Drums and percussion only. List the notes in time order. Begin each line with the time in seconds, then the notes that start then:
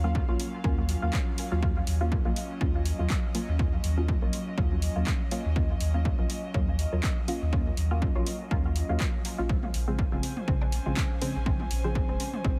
0.15 kick
0.40 open hi-hat
0.64 kick
0.89 open hi-hat
1.13 kick, clap
1.38 open hi-hat
1.63 kick
1.87 open hi-hat
2.12 kick
2.36 open hi-hat
2.61 kick
2.86 open hi-hat
3.10 kick, clap
3.35 open hi-hat
3.59 kick
3.84 open hi-hat
4.08 kick
4.33 open hi-hat
4.58 kick
4.82 open hi-hat
5.07 kick, clap
5.31 open hi-hat
5.56 kick
5.81 open hi-hat
6.05 kick
6.30 open hi-hat
6.54 kick
6.79 open hi-hat
7.03 kick, clap
7.28 open hi-hat
7.53 kick
7.77 open hi-hat
8.02 kick
8.27 open hi-hat
8.51 kick
8.76 open hi-hat
9.00 kick, clap
9.25 open hi-hat
9.49 kick
9.63 mid tom
9.74 open hi-hat
9.99 kick
10.23 open hi-hat
10.37 mid tom
10.48 kick
10.61 low woodblock
10.72 open hi-hat
10.97 kick, clap
11.22 open hi-hat
11.46 kick
11.60 mid tom
11.71 open hi-hat
11.95 kick
12.20 open hi-hat
12.34 mid tom
12.45 kick